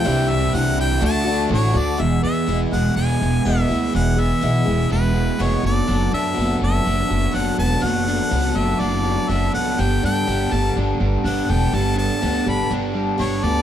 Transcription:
<<
  \new Staff \with { instrumentName = "Harmonica" } { \time 4/4 \key e \dorian \tempo 4 = 123 g''8 e''8 fis''8 g''8 a''4 cis''8 d''8 | e''8 e''4 fis''8 gis''4 e''4 | fis''8 e''4. b'4 cis''8 d''8~ | d''8 e''4 e''4. fis''8 a''8 |
fis''4. e''8 d''4 e''8 fis''8 | g''8 g''4 a''8 r4 fis''8 g''8 | a''8 a''4 b''8 r4 cis''8 d''8 | }
  \new Staff \with { instrumentName = "Grand piano" } { \time 4/4 \key e \dorian <d' e' g' c''>2 <d' fis' a' d''>2 | r1 | r1 | r1 |
r1 | r1 | r1 | }
  \new Staff \with { instrumentName = "Overdriven electric guitar" } { \time 4/4 \key e \dorian <c e g c' e'>4. <g c' e'>8 <d a d' fis'>8 <a d' fis'>8 <d a d' fis'>8 <a d' fis'>8 | e,8 b8 e'8 gis8 b8 gis8 b8 e'8 | e,8 b8 e'8 gis8 b8 gis8 b8 fis8 | fis8 d'8 b8 fis8 d'8 fis8 d'8 b8 |
fis8 d'8 b8 fis8 d'8 fis8 d'8 b8 | g8 d'8 b8 g8 d'8 g8 d'8 b8 | g8 d'8 b8 g8 d'8 g8 d'8 b8 | }
  \new Staff \with { instrumentName = "Twelve-string acoustic guitar" } { \time 4/4 \key e \dorian <c e g d' e'>8 <g d' e'>8 <e g d' e'>4 <d a d' fis'>8 <a d' fis'>8 <d a d' fis'>8 <a d' fis'>8 | <e, b, e gis b gis'>8 <e gis b gis'>8 <e, b, e gis b gis'>8 <e gis b gis'>8 <e gis b gis'>4 <e, b, e gis b gis'>8 <e gis b gis'>8 | <e, b, e gis b gis'>8 <e gis b gis'>8 <e, b, e gis b gis'>8 <e gis b gis'>8 <e gis b gis'>4 <e, b, e gis b gis'>8 <b d' a'>8 | <fis b d' a'>8 <b d' a'>8 <fis b d' a'>8 <b d' a'>8 <fis b d' a'>4 <fis b d' a'>8 <b d' a'>8 |
<fis b d' a'>8 <b d' a'>8 <fis b d' a'>8 <b d' a'>8 <fis b d' a'>4 <fis b d' a'>8 <b d' a'>8 | <g b d' a'>8 <b d' a'>8 <g b d' a'>8 <b d' a'>8 <g b d' a'>4 <g b d' a'>8 <b d' a'>8 | <g b d' a'>8 <b d' a'>8 <g b d' a'>8 <b d' a'>8 <g b d' a'>4 <g b d' a'>8 <b d' a'>8 | }
  \new Staff \with { instrumentName = "Upright bass" } { \clef bass \time 4/4 \key e \dorian c,4 c,4 d,4 a,,8 d,8 | e,,8 e,8 e,,8 e,,8 e,,8 e,,8 e,,8 d,8 | e,,4 b,,8 e,,8 e,,4 f,,8 fis,,8 | fis,,8 fis,8 fis,,8 fis,,8 fis,,8 fis,,8 fis,,8 e,,8 |
fis,,4 cis,8 fis,,8 fis,,4 fis,,8 cis,8 | g,,8 g,8 g,,8 g,,8 g,,8 g,,8 g,,8 e,,8 | g,,4 d,8 g,,8 g,,4 g,,8 d,8 | }
>>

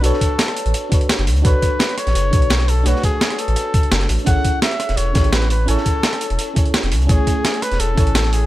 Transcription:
<<
  \new Staff \with { instrumentName = "Muted trumpet" } { \time 4/4 \key b \dorian \tempo 4 = 170 a'2. r4 | b'4. cis''2 a'8 | fis'8 gis'4 a'2 r8 | fis''4 e''4 cis''4 b'8 b'8 |
a'2~ a'8. r4 r16 | gis'4. b'8 a'4. gis'8 | }
  \new Staff \with { instrumentName = "FM electric piano" } { \time 4/4 \key b \dorian <d' fis' a' b' cis''>2~ <d' fis' a' b' cis''>8 <d' fis' a' b' cis''>4. | <d' fis' a' b' cis''>2~ <d' fis' a' b' cis''>8 <d' fis' a' b' cis''>4. | <a d' fis' b' cis''>2~ <a d' fis' b' cis''>8 r4. | <cis' e' gis' a' cis''>2~ <cis' e' gis' a' cis''>8 <cis' e' gis' a' cis''>4. |
<cis' e' a' cis'' gis''>2~ <cis' e' a' cis'' gis''>8 <cis' e' gis' a' cis''>4. | <a cis' e' gis' cis''>2~ <a cis' e' gis' cis''>8 <cis' e' a' cis'' gis''>4. | }
  \new Staff \with { instrumentName = "Sub bass" } { \clef bass \time 4/4 \key b \dorian b,,16 r4. a,,16 r4 r16 fis,,16 d,8 | b,,16 r4. a,,16 fis,,8 b,,4. | b,,16 r4. a,,16 r4 fis,,8 a,,16 r16 | a,,16 r4. e,,16 e,,8 a,,4. |
a,,16 r4. e,,16 r4 r16 e,,16 cis,8 | a,,16 r4. e,,16 e,,8 a,,4. | }
  \new DrumStaff \with { instrumentName = "Drums" } \drummode { \time 4/4 hh16 sn16 <hh bd>8 <hh sn>16 <hh ss>16 hh16 hh16 hh8 <hh bd>16 hh16 <hh sn>16 <hh sn>16 <hh hho>16 hh16 | <hh bd>8 <hh bd>8 <hh sn>16 hh16 <hh ss>16 <hh sn>16 hh8 <hh bd>16 hh16 <hh sn>16 <hh sn>16 <hh hho>8 | hh16 sn16 <hh bd>8 <hh sn>16 <hh ss>16 hh16 hh16 hh8 <hh bd>16 hh16 <hh sn>16 <hh sn>16 <hh hho>16 hh16 | <hh bd>8 <hh bd>8 <hh sn>16 hh16 <hh ss>16 <hh sn>16 hh8 <hh bd sn>16 hh16 <hh sn>16 <hh sn>16 <hh hho>8 |
hh16 sn16 <hh bd>8 <hh sn>16 <hh ss>16 hh16 hh16 hh8 <hh bd>16 hh16 <hh sn>16 <hh sn>16 <hh hho>16 hh16 | <hh bd>8 <hh bd>8 <hh sn>16 hh16 <hh ss>16 <hh sn>16 hh8 <hh bd>16 hh16 <hh sn>16 <hh sn>16 <hh hho>8 | }
>>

